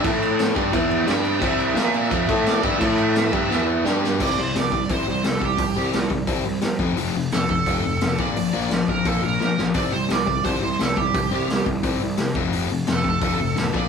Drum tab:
CC |xxxxxxxx|xxxxxxxx|xxxx----|x-------|
HH |--------|--------|--------|--o-o-o-|
SD |--o---o-|--o---o-|--o-o-oo|--o---o-|
BD |o--oo---|o---oo-o|o--o----|o--oo--o|

CC |--------|--------|--------|--------|
HH |o-o-o-o-|o-o-o-o-|o-o-o---|o-o-o-o-|
SD |--o---o-|--o---o-|--o---oo|--o---o-|
BD |o--oo--o|---oo--o|---oo---|o--oo--o|

CC |--------|--------|
HH |o-o-o-o-|o-o-o-o-|
SD |--o---o-|--o---o-|
BD |o--oo--o|---oo--o|